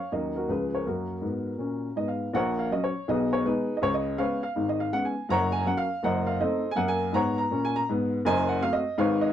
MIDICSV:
0, 0, Header, 1, 2, 480
1, 0, Start_track
1, 0, Key_signature, 6, "major"
1, 0, Tempo, 369458
1, 1108, Time_signature, 4, 2, 24, 8
1, 12119, End_track
2, 0, Start_track
2, 0, Title_t, "Upright piano"
2, 0, Program_c, 0, 0
2, 0, Note_on_c, 0, 73, 61
2, 0, Note_on_c, 0, 77, 76
2, 142, Note_off_c, 0, 73, 0
2, 153, Note_on_c, 0, 39, 59
2, 155, Note_on_c, 0, 54, 30
2, 156, Note_off_c, 0, 77, 0
2, 163, Note_on_c, 0, 58, 35
2, 165, Note_on_c, 0, 75, 65
2, 171, Note_on_c, 0, 61, 31
2, 176, Note_on_c, 0, 70, 53
2, 386, Control_c, 0, 64, 127
2, 417, Note_off_c, 0, 54, 0
2, 423, Note_off_c, 0, 58, 0
2, 429, Note_off_c, 0, 61, 0
2, 449, Note_off_c, 0, 70, 0
2, 465, Note_off_c, 0, 75, 0
2, 469, Note_on_c, 0, 70, 56
2, 488, Note_on_c, 0, 66, 50
2, 559, Note_off_c, 0, 39, 0
2, 632, Note_on_c, 0, 37, 56
2, 633, Note_off_c, 0, 66, 0
2, 634, Note_off_c, 0, 70, 0
2, 635, Note_on_c, 0, 53, 30
2, 642, Note_on_c, 0, 61, 35
2, 645, Control_c, 0, 64, 0
2, 646, Note_on_c, 0, 71, 65
2, 665, Note_on_c, 0, 68, 51
2, 875, Control_c, 0, 64, 127
2, 897, Note_off_c, 0, 53, 0
2, 903, Note_off_c, 0, 61, 0
2, 935, Note_off_c, 0, 68, 0
2, 946, Note_off_c, 0, 71, 0
2, 969, Note_on_c, 0, 73, 64
2, 982, Note_on_c, 0, 70, 43
2, 1039, Note_off_c, 0, 37, 0
2, 1105, Note_off_c, 0, 70, 0
2, 1120, Control_c, 0, 64, 0
2, 1123, Note_on_c, 0, 42, 54
2, 1125, Note_off_c, 0, 73, 0
2, 1125, Note_on_c, 0, 70, 60
2, 1138, Note_on_c, 0, 58, 55
2, 1141, Note_on_c, 0, 66, 49
2, 1347, Control_c, 0, 64, 127
2, 1502, Note_off_c, 0, 42, 0
2, 1510, Note_off_c, 0, 58, 0
2, 1580, Note_on_c, 0, 44, 52
2, 1602, Control_c, 0, 64, 0
2, 1608, Note_on_c, 0, 59, 51
2, 1968, Note_off_c, 0, 44, 0
2, 1985, Note_off_c, 0, 59, 0
2, 2054, Note_on_c, 0, 46, 47
2, 2081, Note_on_c, 0, 61, 46
2, 2445, Note_off_c, 0, 46, 0
2, 2461, Note_off_c, 0, 61, 0
2, 2514, Note_off_c, 0, 66, 0
2, 2548, Note_on_c, 0, 44, 53
2, 2558, Note_off_c, 0, 70, 0
2, 2559, Note_on_c, 0, 75, 70
2, 2571, Note_on_c, 0, 59, 49
2, 2703, Note_on_c, 0, 77, 58
2, 2709, Note_off_c, 0, 75, 0
2, 2933, Note_off_c, 0, 44, 0
2, 2947, Note_off_c, 0, 59, 0
2, 3030, Note_off_c, 0, 77, 0
2, 3034, Note_on_c, 0, 34, 74
2, 3035, Note_on_c, 0, 46, 76
2, 3050, Note_on_c, 0, 78, 94
2, 3067, Note_on_c, 0, 73, 71
2, 3070, Note_on_c, 0, 70, 73
2, 3267, Control_c, 0, 64, 127
2, 3337, Note_off_c, 0, 73, 0
2, 3339, Note_off_c, 0, 70, 0
2, 3348, Note_off_c, 0, 78, 0
2, 3365, Note_on_c, 0, 77, 76
2, 3441, Note_off_c, 0, 34, 0
2, 3441, Note_off_c, 0, 46, 0
2, 3523, Note_off_c, 0, 77, 0
2, 3523, Note_on_c, 0, 54, 46
2, 3528, Control_c, 0, 64, 0
2, 3528, Note_on_c, 0, 61, 50
2, 3537, Note_on_c, 0, 75, 78
2, 3678, Note_off_c, 0, 75, 0
2, 3686, Note_on_c, 0, 73, 72
2, 3783, Note_off_c, 0, 54, 0
2, 3787, Note_off_c, 0, 61, 0
2, 4001, Note_off_c, 0, 73, 0
2, 4004, Note_on_c, 0, 35, 66
2, 4004, Note_on_c, 0, 47, 73
2, 4017, Note_on_c, 0, 75, 84
2, 4030, Note_on_c, 0, 71, 62
2, 4039, Note_on_c, 0, 68, 62
2, 4227, Control_c, 0, 64, 127
2, 4298, Note_off_c, 0, 71, 0
2, 4303, Note_off_c, 0, 68, 0
2, 4312, Note_off_c, 0, 75, 0
2, 4323, Note_on_c, 0, 73, 84
2, 4406, Note_off_c, 0, 35, 0
2, 4406, Note_off_c, 0, 47, 0
2, 4477, Note_on_c, 0, 56, 47
2, 4481, Note_on_c, 0, 59, 49
2, 4483, Note_off_c, 0, 73, 0
2, 4489, Control_c, 0, 64, 0
2, 4493, Note_on_c, 0, 71, 79
2, 4505, Note_on_c, 0, 63, 59
2, 4509, Note_on_c, 0, 68, 55
2, 4739, Note_off_c, 0, 56, 0
2, 4742, Note_off_c, 0, 59, 0
2, 4856, Note_off_c, 0, 63, 0
2, 4858, Note_off_c, 0, 68, 0
2, 4876, Note_off_c, 0, 71, 0
2, 4898, Note_on_c, 0, 75, 72
2, 4960, Note_on_c, 0, 49, 83
2, 4967, Note_off_c, 0, 75, 0
2, 4967, Note_on_c, 0, 37, 73
2, 4974, Note_on_c, 0, 73, 92
2, 5116, Note_off_c, 0, 73, 0
2, 5121, Note_on_c, 0, 75, 80
2, 5184, Control_c, 0, 64, 127
2, 5364, Note_off_c, 0, 49, 0
2, 5368, Note_off_c, 0, 37, 0
2, 5432, Note_on_c, 0, 56, 41
2, 5435, Note_on_c, 0, 77, 89
2, 5436, Note_on_c, 0, 59, 42
2, 5436, Note_on_c, 0, 61, 49
2, 5438, Note_off_c, 0, 75, 0
2, 5447, Control_c, 0, 64, 0
2, 5455, Note_on_c, 0, 73, 62
2, 5461, Note_on_c, 0, 71, 66
2, 5695, Note_off_c, 0, 56, 0
2, 5698, Note_off_c, 0, 59, 0
2, 5698, Note_off_c, 0, 61, 0
2, 5730, Note_off_c, 0, 73, 0
2, 5733, Note_off_c, 0, 71, 0
2, 5738, Note_off_c, 0, 77, 0
2, 5758, Note_on_c, 0, 77, 84
2, 5922, Note_on_c, 0, 44, 64
2, 5926, Note_on_c, 0, 32, 63
2, 6074, Note_off_c, 0, 77, 0
2, 6095, Note_on_c, 0, 75, 75
2, 6234, Note_off_c, 0, 75, 0
2, 6238, Note_on_c, 0, 77, 75
2, 6325, Note_off_c, 0, 44, 0
2, 6327, Note_off_c, 0, 32, 0
2, 6396, Note_on_c, 0, 56, 43
2, 6400, Note_off_c, 0, 77, 0
2, 6402, Note_on_c, 0, 59, 45
2, 6407, Note_on_c, 0, 78, 99
2, 6409, Note_on_c, 0, 61, 47
2, 6552, Note_off_c, 0, 78, 0
2, 6559, Note_on_c, 0, 80, 70
2, 6658, Note_off_c, 0, 56, 0
2, 6662, Note_off_c, 0, 59, 0
2, 6668, Note_off_c, 0, 61, 0
2, 6872, Note_on_c, 0, 42, 80
2, 6877, Note_off_c, 0, 80, 0
2, 6878, Note_on_c, 0, 30, 67
2, 6890, Note_on_c, 0, 82, 103
2, 6904, Note_on_c, 0, 73, 77
2, 6909, Note_on_c, 0, 78, 88
2, 7107, Control_c, 0, 64, 127
2, 7173, Note_on_c, 0, 80, 88
2, 7174, Note_off_c, 0, 73, 0
2, 7177, Note_off_c, 0, 78, 0
2, 7188, Note_off_c, 0, 82, 0
2, 7279, Note_off_c, 0, 42, 0
2, 7283, Note_off_c, 0, 30, 0
2, 7347, Note_off_c, 0, 80, 0
2, 7347, Note_on_c, 0, 54, 43
2, 7355, Note_on_c, 0, 61, 49
2, 7356, Note_on_c, 0, 58, 42
2, 7367, Control_c, 0, 64, 0
2, 7367, Note_on_c, 0, 78, 92
2, 7502, Note_on_c, 0, 77, 95
2, 7512, Note_off_c, 0, 78, 0
2, 7611, Note_off_c, 0, 54, 0
2, 7617, Note_off_c, 0, 61, 0
2, 7618, Note_off_c, 0, 58, 0
2, 7828, Note_off_c, 0, 77, 0
2, 7831, Note_on_c, 0, 30, 68
2, 7842, Note_on_c, 0, 42, 79
2, 7849, Note_on_c, 0, 78, 89
2, 7862, Note_on_c, 0, 72, 69
2, 7865, Note_on_c, 0, 75, 70
2, 8067, Control_c, 0, 64, 127
2, 8133, Note_off_c, 0, 72, 0
2, 8135, Note_off_c, 0, 75, 0
2, 8141, Note_on_c, 0, 77, 84
2, 8147, Note_off_c, 0, 78, 0
2, 8238, Note_off_c, 0, 30, 0
2, 8244, Note_off_c, 0, 42, 0
2, 8311, Note_off_c, 0, 77, 0
2, 8320, Control_c, 0, 64, 0
2, 8323, Note_on_c, 0, 60, 47
2, 8323, Note_on_c, 0, 63, 51
2, 8324, Note_on_c, 0, 57, 45
2, 8324, Note_on_c, 0, 75, 85
2, 8341, Note_on_c, 0, 72, 67
2, 8343, Note_on_c, 0, 69, 61
2, 8583, Note_off_c, 0, 60, 0
2, 8583, Note_off_c, 0, 63, 0
2, 8584, Note_off_c, 0, 57, 0
2, 8693, Note_off_c, 0, 72, 0
2, 8694, Note_off_c, 0, 69, 0
2, 8710, Note_off_c, 0, 75, 0
2, 8722, Note_on_c, 0, 80, 92
2, 8777, Note_on_c, 0, 42, 82
2, 8789, Note_on_c, 0, 78, 100
2, 8798, Note_off_c, 0, 80, 0
2, 8803, Note_on_c, 0, 58, 77
2, 8941, Note_on_c, 0, 80, 101
2, 8943, Note_off_c, 0, 78, 0
2, 9024, Control_c, 0, 64, 127
2, 9165, Note_off_c, 0, 42, 0
2, 9181, Note_off_c, 0, 58, 0
2, 9258, Note_on_c, 0, 44, 77
2, 9268, Note_off_c, 0, 80, 0
2, 9278, Note_on_c, 0, 82, 97
2, 9282, Control_c, 0, 64, 0
2, 9283, Note_on_c, 0, 59, 72
2, 9288, Note_on_c, 0, 78, 74
2, 9297, Note_on_c, 0, 73, 79
2, 9565, Note_off_c, 0, 78, 0
2, 9569, Note_off_c, 0, 82, 0
2, 9570, Note_off_c, 0, 73, 0
2, 9588, Note_on_c, 0, 82, 89
2, 9646, Note_off_c, 0, 44, 0
2, 9661, Note_off_c, 0, 59, 0
2, 9753, Note_on_c, 0, 46, 67
2, 9772, Note_on_c, 0, 61, 69
2, 9908, Note_off_c, 0, 82, 0
2, 9934, Note_on_c, 0, 80, 94
2, 10072, Note_off_c, 0, 80, 0
2, 10080, Note_on_c, 0, 82, 93
2, 10135, Note_off_c, 0, 46, 0
2, 10146, Note_off_c, 0, 61, 0
2, 10240, Note_off_c, 0, 82, 0
2, 10254, Note_on_c, 0, 44, 74
2, 10269, Note_on_c, 0, 59, 77
2, 10627, Note_off_c, 0, 44, 0
2, 10636, Note_off_c, 0, 59, 0
2, 10718, Note_on_c, 0, 30, 84
2, 10721, Note_on_c, 0, 42, 92
2, 10736, Note_on_c, 0, 80, 117
2, 10742, Note_on_c, 0, 75, 83
2, 10749, Note_on_c, 0, 72, 90
2, 10956, Control_c, 0, 64, 127
2, 11012, Note_off_c, 0, 75, 0
2, 11016, Note_off_c, 0, 72, 0
2, 11026, Note_on_c, 0, 78, 82
2, 11030, Note_off_c, 0, 80, 0
2, 11121, Note_off_c, 0, 30, 0
2, 11123, Note_off_c, 0, 42, 0
2, 11189, Note_on_c, 0, 57, 51
2, 11192, Note_off_c, 0, 78, 0
2, 11195, Note_on_c, 0, 60, 52
2, 11197, Control_c, 0, 64, 0
2, 11204, Note_on_c, 0, 66, 59
2, 11206, Note_on_c, 0, 77, 105
2, 11340, Note_on_c, 0, 75, 95
2, 11350, Note_off_c, 0, 77, 0
2, 11452, Note_off_c, 0, 57, 0
2, 11457, Note_off_c, 0, 60, 0
2, 11463, Note_off_c, 0, 66, 0
2, 11664, Note_on_c, 0, 32, 81
2, 11664, Note_on_c, 0, 44, 88
2, 11666, Note_off_c, 0, 75, 0
2, 11673, Note_on_c, 0, 77, 96
2, 11694, Note_on_c, 0, 73, 71
2, 11697, Note_on_c, 0, 71, 76
2, 11909, Control_c, 0, 64, 127
2, 11967, Note_off_c, 0, 73, 0
2, 11969, Note_off_c, 0, 71, 0
2, 11971, Note_on_c, 0, 75, 92
2, 11977, Note_off_c, 0, 77, 0
2, 12072, Note_off_c, 0, 32, 0
2, 12072, Note_off_c, 0, 44, 0
2, 12119, Note_off_c, 0, 75, 0
2, 12119, End_track
0, 0, End_of_file